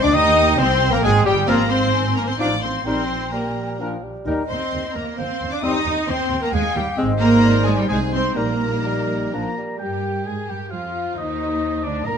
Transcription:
Already playing: flute D#5
0.02 double bass section D2, viola section D4, french horn section D4, bassoon D4, cello section D4, trumpet section D5, clarinet D5, violin section D5 D6, oboe D5
0.12 double bass section D#2, viola section D#4, bassoon D#4, french horn section D#4, cello section D#4, oboe D#5, clarinet D#5, trumpet section D#5, violin section D#5 D#6, flute G5
0.58 double bass section C2, bassoon C4, cello section C4, viola section C4, french horn section C4, trumpet section C5, violin section C5 C6, oboe C5, clarinet C5
0.91 double bass section A#1, viola section A#3, french horn section A#3, cello section A#3, bassoon A#3, clarinet A#4, trumpet section A#4, oboe A#4, violin section A#4 A#5
1.02 double bass section G#1, french horn section G#3, cello section G#3, viola section G#3, bassoon G#3, clarinet G#4, oboe G#4, trumpet section G#4, violin section G#4 G#5
1.25 double bass section G1, french horn section G3, viola section G3, bassoon G3, cello section G3, oboe G4, trumpet section G4, clarinet G4, violin section G4 G5
1.47 double bass section G#1, french horn section F3 C4, bassoon F3, viola section A#3, cello section A#3, clarinet C4, trumpet section F4, violin section A#4 A#5, oboe A#4, flute F5
1.69 viola section C4, cello section C4, violin section C5 C6, oboe C5
1.93 flute G#5
2.15 viola section A#3, cello section A#3, violin section A#4 A#5, oboe A#4
2.26 cello section C4, viola section C4, violin section C5 C6, oboe C5
2.38 double bass section A1, french horn section F3 D#4, bassoon F3, cello section D4, viola section D4, clarinet D#4, trumpet section F4, violin section D5 D6, oboe D5, flute F5
2.62 cello section C4, viola section C4, violin section C5 C6, oboe C5
2.84 double bass section A#1, french horn section G3 D#4, bassoon G3, cello section C4, viola section C4, clarinet D#4, trumpet section A#4, oboe C5, violin section C5 C6, flute G5
3.32 bassoon G3, cello section A#3, viola section A#3, oboe A#4, violin section A#4 A#5
3.79 french horn section F3 D4, bassoon F3, clarinet D4, trumpet section A#4
4.03 bassoon G3
4.25 double bass section D#2, french horn section G3 D#4, bassoon G3, clarinet D#4, trumpet section A#4, flute D#5
4.48 double bass section D#2, cello section C4, viola section C4, violin section C5 C6, oboe C5
4.73 double bass section D#2
4.94 double bass section D#2, cello section A#3, viola section A#3, violin section A#4 A#5, oboe A#4
5.17 double bass section D#2, cello section C4, viola section C4, violin section C5 C6, oboe C5, flute F5
5.41 double bass section D#2
5.51 cello section D4, viola section D4, violin section D5 D6, oboe D5
5.61 double bass section D#2, french horn section G3 D#4, bassoon G3, clarinet C4, cello section D#4, viola section D#4, trumpet section C5, violin section D#5 D#6, flute D#5, oboe D#5
5.85 double bass section D#2
6.07 double bass section D#2, cello section C4, viola section C4, violin section C5 C6, oboe C5, flute G5
6.30 double bass section D#2
6.41 viola section A#3, cello section A#3, violin section A#4 A#5, oboe A#4
6.51 double bass section D#2, viola section G#3, cello section G#3, violin section G#4 G#5, oboe G#4, flute F5
6.74 double bass section D#2, cello section G3, viola section G3, violin section G4 G5, oboe G4
6.97 double bass section G#1, french horn section G#3 D#4, bassoon G#3, clarinet C4, trumpet section C5, flute D#5
7.20 cello section A#3, viola section A#3, violin section A#4 A#5, oboe A#4
7.43 flute D5
7.65 cello section G#3, viola section G#3, oboe G#4, violin section G#4 G#5
7.77 cello section G3, viola section G3, oboe G4, violin section G4 G5
7.88 double bass section C2, cello section G#3, french horn section G#3 D#4, viola section G#3, oboe G#4, violin section G#4 G#5, trumpet section C5, flute C5
8.12 viola section C4, cello section C4, oboe C5, violin section C5 C6
8.35 double bass section A#1, french horn section G3 D#4, bassoon G3, viola section A#3, cello section A#3, clarinet D#4, flute A#4, trumpet section A#4, oboe A#4, violin section A#4 A#5
8.85 bassoon G3
9.32 double bass section A#1, french horn section F3 D4 A#4, bassoon F3, cello section A#3, clarinet D4, trumpet section A#4 A#5, flute A#5, oboe A#5
9.57 bassoon G3
9.79 double bass section G2, cello section G3, french horn section G4, viola section G4, violin section G4, clarinet A#4, oboe G5, flute G5, trumpet section G5
10.25 double bass section G#2, cello section G#3, violin section G#4, french horn section G#4, viola section G#4, flute G#5, oboe G#5, trumpet section G#5
10.47 double bass section G2, cello section G3, violin section G4, viola section G4, french horn section G4, flute G5, trumpet section G5, oboe G5
10.71 double bass section F2, cello section F3, violin section F4, viola section F4, french horn section F4, clarinet C5, oboe F5, flute F5, trumpet section F5
11.15 double bass section D#2, cello section D#3, violin section D#4, viola section D#4, french horn section D#4, flute D#5, trumpet section D#5, oboe D#5
11.83 double bass section D2, cello section D3, violin section D4, viola section D4, french horn section D4, oboe D5, trumpet section D5, flute D5
12.05 double bass section A#2, cello section A#3, clarinet A#4, violin section A#4, viola section A#4, french horn section A#4, oboe A#5, flute A#5, trumpet section A#5

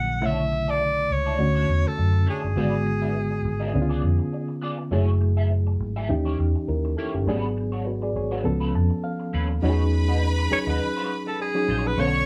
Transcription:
Already playing: fingered electric bass A#1, reed electric piano D3 F#3 A#3 E4, alto saxophone F#5
0.20 fingered electric bass B1, reed electric piano C#3 A3 E4, clean electric guitar D4 E4 A4 C#5
0.26 reed electric piano D3, alto saxophone E5
0.52 muted clean electric guitar stroke
0.67 clean electric guitar D4 E4 A4 D5, alto saxophone D5
0.80 muted clean electric guitar stroke
0.97 muted clean electric guitar stroke
1.11 fingered electric bass C#2, alto saxophone C#5
1.26 clean electric guitar D4 E4 A4 D5
1.38 fingered electric bass D2, reed electric piano D3 A3 C#4 F#4, muted clean electric guitar stroke
1.55 clean electric guitar D4 E4 A4 C#5
1.68 fingered electric bass E2, muted clean electric guitar stroke
1.85 alto saxophone A4, muted clean electric guitar stroke
1.98 fingered electric bass F#2, muted clean electric guitar stroke
2.13 muted clean electric guitar stroke
2.26 clean electric guitar D4 E4 A4 C#5, alto saxophone G#4
2.43 fingered electric bass G1, muted clean electric guitar stroke
2.56 fingered electric bass G#1, reed electric piano D3 G#3 B3 F#4, clean electric guitar D4 F#4 B4 D5
2.86 muted clean electric guitar stroke
3.02 clean electric guitar D4 F#4 B4 E5
3.15 muted clean electric guitar stroke
3.31 muted clean electric guitar stroke
3.45 fingered electric bass G#1
3.60 clean electric guitar D4 F#4 B4 E5
3.74 fingered electric bass C#2, reed electric piano D3 B3 C#4 D4, muted clean electric guitar stroke
3.82 reed electric piano F4
3.89 clean electric guitar B3 F4 G#4 D5
4.03 fingered electric bass F2, muted clean electric guitar stroke
4.19 muted clean electric guitar stroke
4.33 muted clean electric guitar stroke
4.48 muted clean electric guitar stroke
4.62 clean electric guitar B3 F4 G#4 D5
4.78 muted clean electric guitar stroke
4.91 fingered electric bass F#1, reed electric piano F#3 A3 E4 G#4, clean electric guitar A3 E4 G#4 C#5
5.21 muted clean electric guitar stroke
5.37 clean electric guitar A3 E4 G#4 E5
5.50 muted clean electric guitar stroke
5.67 muted clean electric guitar stroke
5.80 fingered electric bass G#1
5.96 clean electric guitar A3 E4 G#4 E5
6.09 fingered electric bass D#2, reed electric piano E3 C#4 D#4 G4, muted clean electric guitar stroke
6.25 clean electric guitar A#3 E4 G4 C#5
6.39 fingered electric bass E2, muted clean electric guitar stroke
6.55 muted clean electric guitar stroke
6.68 fingered electric bass D#2, reed electric piano E4 A#4, muted clean electric guitar stroke
6.85 muted clean electric guitar stroke
6.97 clean electric guitar A#3 E4 G4 C#5, reed electric piano E4 A4
7.14 fingered electric bass G1, reed electric piano C#4 G4, muted clean electric guitar stroke
7.27 fingered electric bass G#1, reed electric piano F#3 A3 D4 G#4, clean electric guitar G#3 D4 F#4 B4
7.34 reed electric piano B3
7.57 muted clean electric guitar stroke
7.72 clean electric guitar G#3 D4 F#4 C#5
7.86 reed electric piano F#4 B4, muted clean electric guitar stroke
8.02 reed electric piano G#4 D5, muted clean electric guitar stroke
8.16 fingered electric bass G#1, reed electric piano G#4 C#5
8.31 clean electric guitar G#3 D4 F#4 C#5, reed electric piano F#4 B4
8.44 fingered electric bass C#2, reed electric piano F3 B3 C#4 A4, muted clean electric guitar stroke
8.60 clean electric guitar A3 C#4 F4 B4
8.74 fingered electric bass F2, reed electric piano A5, muted clean electric guitar stroke
8.90 muted clean electric guitar stroke
9.03 reed electric piano F5, muted clean electric guitar stroke
9.20 muted clean electric guitar stroke
9.33 fingered electric bass D#2, clean electric guitar A3 C#4 F4 B4
9.49 muted clean electric guitar stroke
9.62 fingered electric bass E2, reed electric piano F#3 C#4 D#4 F#4, clean electric guitar G#3 D#4 F#4 C#5, violin section B4 B5
9.70 reed electric piano G#4
9.92 muted clean electric guitar stroke
10.08 clean electric guitar G#3 D#4 F#4 D#5
10.22 muted clean electric guitar stroke
10.38 muted clean electric guitar stroke
10.51 reed electric piano F#3 C#4 D#4 G#4, alto saxophone C#5, muted fingered electric bass stroke
10.67 fingered electric bass D#2, clean electric guitar G#3 D#4 F#4 D#5, alto saxophone B4
10.81 muted clean electric guitar stroke
10.97 clean electric guitar G#3 D#4 F#4 C#5
11.10 muted clean electric guitar stroke
11.27 alto saxophone A4, muted clean electric guitar stroke
11.40 alto saxophone G#4, muted clean electric guitar stroke
11.55 reed electric piano F#3 C#4 D#4 G#4, muted clean electric guitar stroke
11.68 fingered electric bass A#1, clean electric guitar G#3 D#4 F#4 C#5
11.85 alto saxophone B4, muted clean electric guitar stroke
11.97 fingered electric bass B1, reed electric piano D3 B3 C#4 A4, clean electric guitar A3 D4 F#4 C#5, violin section C#5 C#6, alto saxophone C#5

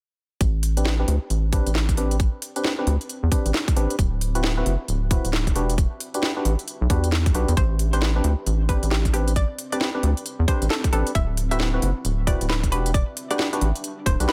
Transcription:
0.41 analog synth bass A1, ambient pad C4, kick, closed hi-hat
0.54 ambient pad G4
0.59 ambient pad B5, open hi-hat
0.77 synth stab C4 D4 G4 B4, ambient pad D5, closed hi-hat
0.86 snare
0.99 synth stab C4 D4 G4 B4
1.08 analog synth bass D2, open hi-hat
1.30 analog synth bass A1, closed hi-hat
1.53 synth stab C4 D4 G4 B4, kick, open hi-hat
1.66 analog synth bass A1, closed hi-hat
1.75 snare
1.89 kick, closed hi-hat
1.97 synth stab C4 D4 G4 B4, open hi-hat
2.11 closed hi-hat
2.20 kick, closed hi-hat
2.42 open hi-hat
2.56 synth stab C4 D4 G4 B4, closed hi-hat
2.65 snare
2.79 synth stab C4 D4 G4 B4
2.87 analog synth bass D2, open hi-hat
3.01 closed hi-hat
3.09 closed hi-hat
3.23 analog synth bass E2
3.32 synth stab C4 D4 G4 B4, kick, open hi-hat
3.45 analog synth bass A1, closed hi-hat
3.54 snare
3.68 kick, closed hi-hat
3.76 analog synth bass A1, synth stab C4 D4 G4 B4, open hi-hat
3.90 closed hi-hat
3.99 analog synth bass D1, kick, closed hi-hat
4.21 open hi-hat
4.25 ambient pad F#4
4.35 synth stab C4 E4 F#4 B4, closed hi-hat
4.44 ambient pad E5, snare
4.57 synth stab C4 E4 F#4 B4
4.66 analog synth bass F#1, open hi-hat
4.88 analog synth bass D1, closed hi-hat
5.11 synth stab C4 E4 F#4 B4, kick, open hi-hat
5.25 analog synth bass D1, closed hi-hat
5.33 snare
5.47 kick, closed hi-hat
5.56 analog synth bass E1, synth stab D4 F#4 G4 B4, ambient pad D4, open hi-hat
5.64 ambient pad G4
5.70 closed hi-hat
5.78 kick, closed hi-hat
6.00 open hi-hat
6.14 synth stab D4 F#4 G4 B4, closed hi-hat
6.23 snare
6.37 synth stab D4 F#4 G4 B4
6.45 analog synth bass A1, open hi-hat
6.59 closed hi-hat
6.68 closed hi-hat
6.81 analog synth bass B1
6.90 analog synth bass E2, synth stab D4 F#4 G4 B4, kick, open hi-hat
7.04 closed hi-hat
7.12 snare
7.26 kick, closed hi-hat
7.34 analog synth bass B1, synth stab D4 F#4 G4 B4, open hi-hat
7.48 analog synth bass E2, closed hi-hat
7.57 analog synth bass A1, ambient pad C4, synth pluck C5, kick, closed hi-hat
7.74 ambient pad D5
7.79 open hi-hat
7.93 synth stab C4 D4 G4 B4, synth pluck C5, cross-stick, closed hi-hat
8.02 snare
8.16 synth stab C4 D4 G4 B4
8.24 analog synth bass D2, open hi-hat
8.46 analog synth bass A1, closed hi-hat
8.69 synth stab C4 D4 G4 B4, synth pluck B4, kick, cross-stick, open hi-hat
8.83 analog synth bass A1, closed hi-hat
8.91 synth pluck G4, snare
9.05 kick, closed hi-hat
9.13 synth stab C4 D4 G4 B4, synth pluck G4, open hi-hat
9.28 closed hi-hat
9.36 synth pluck D5, kick, closed hi-hat
9.59 open hi-hat
9.72 synth stab C4 D4 G4 B4, synth pluck D5, cross-stick, closed hi-hat
9.81 snare
9.95 synth stab C4 D4 G4 B4
10.03 analog synth bass D2, open hi-hat
10.17 closed hi-hat
10.26 closed hi-hat
10.39 analog synth bass E2
10.48 synth stab C4 D4 G4 B4, synth pluck C5, kick, cross-stick, open hi-hat
10.62 analog synth bass A1, closed hi-hat
10.70 synth pluck A4, snare
10.84 kick, closed hi-hat
10.93 analog synth bass A1, synth stab C4 D4 G4 B4, synth pluck A4, open hi-hat
11.07 closed hi-hat
11.15 analog synth bass D1, synth pluck E5, kick, closed hi-hat
11.34 ambient pad F#4, open hi-hat
11.51 synth stab C4 E4 F#4 B4, synth pluck E5, cross-stick, closed hi-hat
11.60 ambient pad E5, snare
11.74 synth stab C4 E4 F#4 B4
11.82 analog synth bass F#1, open hi-hat
12.05 analog synth bass D1, closed hi-hat
12.27 synth stab C4 E4 F#4 B4, synth pluck D5, kick, cross-stick, open hi-hat
12.41 analog synth bass D1, closed hi-hat
12.50 synth pluck B4, snare
12.63 kick, closed hi-hat
12.72 analog synth bass E1, ambient pad D4, synth stab D4 F#4 G4 B4, synth pluck B4, open hi-hat
12.81 ambient pad G4
12.86 closed hi-hat
12.94 synth pluck D5, kick, closed hi-hat
13.17 open hi-hat
13.31 synth stab D4 F#4 G4 B4, synth pluck D5, cross-stick, closed hi-hat
13.39 snare
13.53 synth stab D4 F#4 G4 B4, closed hi-hat
13.61 analog synth bass A1, open hi-hat
13.76 closed hi-hat
13.84 closed hi-hat
14.06 analog synth bass D1, synth pluck C5, kick, cross-stick, open hi-hat
14.20 analog synth bass B1, synth stab D4 F#4 G4 B4, closed hi-hat
14.29 synth pluck B4, snare

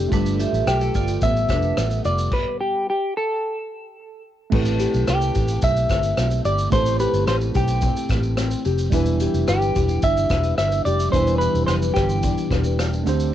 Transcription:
Already playing: nylon-string guitar D3 C4 G4 A4, tine electric piano A3 D4 G4 D5
0.08 fingered electric bass G1, nylon-string guitar G3, tine electric piano A3 F4 G4, kick
0.12 vibraphone D4 B4, nylon-string guitar A4, tine electric piano B4, closed hi-hat, shaker
0.26 shaker
0.40 nylon-string guitar F4, vibraphone G4 E5, closed hi-hat, shaker
0.53 fingered electric bass A1, shaker
0.67 fingered electric bass B1, clean electric guitar G4, nylon-string guitar G4, cross-stick, closed hi-hat, shaker
0.81 nylon-string guitar A4, shaker
0.95 fingered electric bass G1, nylon-string guitar F4, vibraphone F4 D5, kick, closed hi-hat, shaker
1.08 shaker
1.22 fingered electric bass A1, nylon-string guitar B3, clean electric guitar E5, kick, closed hi-hat, shaker
1.36 shaker
1.49 fingered electric bass F1, vibraphone D4 B4, nylon-string guitar A4, kick, cross-stick, closed hi-hat, shaker
1.62 shaker
1.77 fingered electric bass A1, nylon-string guitar B3, cross-stick, closed hi-hat, shaker
1.91 shaker
2.05 fingered electric bass F1, nylon-string guitar F4, clean electric guitar D5, closed hi-hat, shaker
2.18 shaker
2.32 clean electric guitar B4, kick, crash
2.60 clean electric guitar G4
2.90 clean electric guitar G4
3.17 clean electric guitar A4
4.50 fingered electric bass A1, tine electric piano A3 C4 E4 G4, nylon-string guitar A3 B4, kick, crash
4.55 tine electric piano B4
4.65 shaker
4.79 nylon-string guitar G4, closed hi-hat, shaker
4.94 fingered electric bass B1, shaker
5.07 fingered electric bass C2, clean electric guitar G4, nylon-string guitar B4, cross-stick, closed hi-hat, shaker
5.21 shaker
5.35 fingered electric bass A1, nylon-string guitar G4, kick, closed hi-hat, shaker
5.48 shaker
5.62 fingered electric bass B1, nylon-string guitar C4, clean electric guitar E5, kick, closed hi-hat, shaker
5.77 shaker
5.89 fingered electric bass G1, nylon-string guitar B4, kick, cross-stick, closed hi-hat, shaker
6.03 shaker
6.17 fingered electric bass B1, nylon-string guitar C4, cross-stick, closed hi-hat, shaker
6.31 shaker
6.45 fingered electric bass G1, nylon-string guitar G4, clean electric guitar D5, closed hi-hat, shaker
6.58 shaker
6.70 fingered electric bass A1, tine electric piano A3 C4 E4 G4, nylon-string guitar A3 B4, clean electric guitar C5, kick, closed hi-hat, shaker
6.75 tine electric piano C5
6.86 shaker
6.99 nylon-string guitar G4, clean electric guitar B4, closed hi-hat, shaker
7.13 fingered electric bass G1, shaker
7.27 fingered electric bass A1, nylon-string guitar B4, clean electric guitar C5, cross-stick, closed hi-hat, shaker
7.41 shaker
7.55 fingered electric bass B1, nylon-string guitar G4, clean electric guitar G4, kick, closed hi-hat, shaker
7.68 shaker
7.81 nylon-string guitar C4, kick, closed hi-hat, shaker
7.96 shaker
8.09 fingered electric bass A1, nylon-string guitar B4, kick, cross-stick, closed hi-hat, shaker
8.23 shaker
8.37 nylon-string guitar C4, cross-stick, closed hi-hat, shaker
8.51 shaker
8.65 fingered electric bass F1, nylon-string guitar G4, closed hi-hat, shaker
8.78 shaker
8.90 fingered electric bass E1, nylon-string guitar E3 B4, tine electric piano G3 B3 D4 E4, kick, closed hi-hat, shaker
8.95 tine electric piano B4
9.06 shaker
9.20 nylon-string guitar G4, closed hi-hat, shaker
9.34 fingered electric bass F1, shaker
9.48 fingered electric bass G1, clean electric guitar G4, nylon-string guitar B4, cross-stick, closed hi-hat, shaker
9.62 shaker
9.75 fingered electric bass E1, nylon-string guitar G4, kick, closed hi-hat, shaker
9.88 shaker
10.02 fingered electric bass G1, nylon-string guitar D4, clean electric guitar E5, kick, closed hi-hat, shaker
10.17 shaker
10.30 fingered electric bass E1, nylon-string guitar B4, kick, cross-stick, closed hi-hat, shaker
10.44 shaker
10.58 fingered electric bass G1, nylon-string guitar D4, clean electric guitar E5, cross-stick, closed hi-hat, shaker
10.72 shaker
10.85 fingered electric bass F1, nylon-string guitar G4, clean electric guitar D5, closed hi-hat, shaker
11.00 shaker
11.10 fingered electric bass E1, nylon-string guitar E3, tine electric piano G3 B3 D4 E4, clean electric guitar C5, kick, closed hi-hat, shaker
11.14 nylon-string guitar B4, tine electric piano B4
11.27 shaker
11.38 nylon-string guitar G4, clean electric guitar B4, closed hi-hat, shaker
11.54 fingered electric bass E1, shaker
11.67 fingered electric bass F1, nylon-string guitar B4, clean electric guitar C5, cross-stick, closed hi-hat, shaker
11.82 shaker
11.94 fingered electric bass G1, clean electric guitar G4, nylon-string guitar G4, kick, cross-stick, closed hi-hat, shaker
12.09 shaker
12.23 nylon-string guitar D4, kick, closed hi-hat, shaker
12.38 shaker
12.51 fingered electric bass E1, nylon-string guitar B4, kick, cross-stick, closed hi-hat, shaker
12.64 shaker
12.79 nylon-string guitar D4, cross-stick, closed hi-hat, shaker
12.93 shaker
13.04 fingered electric bass D2, nylon-string guitar D3, tine electric piano A3 C4 D4 G4, closed hi-hat, shaker
13.09 tine electric piano C5
13.20 shaker

